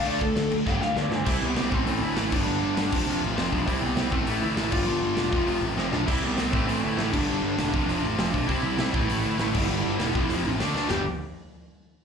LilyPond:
<<
  \new Staff \with { instrumentName = "Lead electric guitar" } { \time 4/4 \key g \major \tempo 4 = 199 d''8 a'4 r8 g''8 f''8 <b d''>8 <d' c''>8 | \key g \mixolydian e'8 b4 c'8 c'8 e'4 d'8~ | d'2~ d'8 r8 c'8 d'8 | e'8 b4 c'8 e'8 e'4 f'8~ |
f'2~ f'8 r8 c'8 d'8 | e'8 b8 b8 c'8 c'8 e'8 e'8 d'8~ | d'2~ d'8 r8 c'8 d'8 | e'4 e'2.~ |
e'2. r4 | g'8 r2. r8 | }
  \new Staff \with { instrumentName = "Distorted electric guitar" } { \clef bass \time 4/4 \key g \major <d fis a d'>2 <g, d g b d'>2 | \key g \mixolydian r1 | r1 | r1 |
r1 | <c e g c' e'>4. <a, e a c' e'>2 <g, d g b d'>8~ | <g, d g b d'>4. <f a c' f'>2~ <f a c' f'>8 | <c e g c' e'>4. <a, e a c' e'>2 <g, d g b d'>8~ |
<g, d g b d'>4. <f, c f a c'>4. <d fis a d'>4 | <g, d g b d' g'>8 r2. r8 | }
  \new Staff \with { instrumentName = "Overdriven electric guitar" } { \clef bass \time 4/4 \key g \major <d a d'>8 <d a>8 <d a>8 <d a>8 <g, d g>8 <g, d>8 <g, d>8 <g, d>8 | \key g \mixolydian <c g c'>4 <c g c'>8 <a, e a>8 <a, e a>4 <a, e a>8 <g, d g>8 | <g, d g>4 <g, d g>8 <f, c f>8 <f, c f>4 <f, c f>8 <f, c f>8 | <c g c'>4 <c g c'>8 <a, e a>8 <a, e a>4 <a, e a>8 <g, d g>8 |
<g, d g>4 <g, d g>8 <f, c f>8 <f, c f>4 <f, c f>8 <f, c f>8 | <c g c'>4 <c g c'>8 <a, e a>8 <a, e a>4 <a, e a>8 <g, d g>8 | <g, d g>4 <g, d g>8 <f, c f>8 <f, c f>4 <f, c f>8 <f, c f>8 | <c g c'>4 <c g c'>8 <a, e a>8 <a, e a>4 <a, e a>8 <g, d g>8 |
<g, d g>4 <g, d g>8 <f, c f>8 <f, c f>4 <d a d'>8 <d a d'>8 | <g, d g>8 r2. r8 | }
  \new Staff \with { instrumentName = "Overdriven electric guitar" } { \clef bass \time 4/4 \key g \major <d a d'>8 <d a>8 <d a>8 <d a>8 <g, d g>8 <g, d>8 <g, d>8 <g, d>8 | \key g \mixolydian <c g c'>4 <c g c'>8 <a, e a>8 <a, e a>4 <a, e a>8 <g, d g>8 | <g, d g>4 <g, d g>8 <f, c f>8 <f, c f>4 <f, c f>8 <f, c f>8 | <c g c'>4 <c g c'>8 <a, e a>8 <a, e a>4 <a, e a>8 <g, d g>8 |
<g, d g>4 <g, d g>8 <f, c f>8 <f, c f>4 <f, c f>8 <f, c f>8 | <c g c'>4 <c g c'>8 <a, e a>8 <a, e a>4 <a, e a>8 <g, d g>8 | <g, d g>4 <g, d g>8 <f, c f>8 <f, c f>4 <f, c f>8 <f, c f>8 | <c g c'>4 <c g c'>8 <a, e a>8 <a, e a>4 <a, e a>8 <g, d g>8 |
<g, d g>4 <g, d g>8 <f, c f>8 <f, c f>4 <d a d'>8 <d a d'>8 | <g, d g>8 r2. r8 | }
  \new Staff \with { instrumentName = "Picked electric bass" } { \clef bass \time 4/4 \key g \major d,4 d,8 d,8 g,,8 d,8 d,4 | \key g \mixolydian c,8 c,8 c,8 a,,8 a,,8 d,8 a,,8 g,,8 | g,,8 g,,8 g,,8 f,,8 f,,8 a,,8 f,,8 b,,8 | c,8 c,8 c,8 a,,8 a,,8 d,8 a,,8 g,,8 |
g,,8 g,,8 e,,8 f,,8 f,,8 a,,8 f,,8 b,,8 | c,8 c,8 c,8 a,,8 a,,8 d,8 a,,8 g,,8 | g,,8 g,,8 e,,8 f,,8 f,,8 a,,8 f,,8 b,,8 | c,8 c,8 c,8 a,,8 a,,8 d,8 a,,8 g,,8 |
g,,8 g,,8 e,,8 f,,8 f,,8 a,,8 d,8 d,8 | g,,8 r2. r8 | }
  \new DrumStaff \with { instrumentName = "Drums" } \drummode { \time 4/4 cymc8 <cymc bd>8 <cymc sn>8 cymc8 <bd sn>8 sn8 sn8 sn8 | <cymc bd>4 <hho sn>8 bd8 hho4 <hho sn>8 <cymc bd>8 | r4 <hho sn>8 <cymc bd>8 r4 <hho sn>8 bd8 | <hho bd>4 <hho sn>8 bd8 hho4 <hho sn>8 <cymc bd>8 |
r4 <hho sn>8 bd8 hho4 sn8 sn8 | <cymc bd>4 <hho sn>8 bd8 hho4 <hho sn>8 <cymc bd>8 | r4 <hho sn>8 bd8 hho4 <hho sn>8 bd8 | <hho bd>4 <hho sn>8 bd8 hho4 <hho sn>8 <cymc bd>8 |
r4 <hho sn>8 bd8 hho4 <hho sn>8 sn8 | <cymc sn tomfh>4 r4 r4 r4 | }
>>